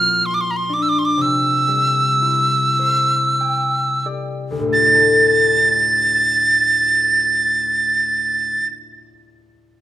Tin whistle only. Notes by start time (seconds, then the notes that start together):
Already playing: F6
0.26 C6
0.34 D6
0.41 C6
0.51 A#5
0.56 C6
0.73 D6
0.82 E6
0.89 D6
0.99 C6
1.05 D6
1.22 E6
4.73 A6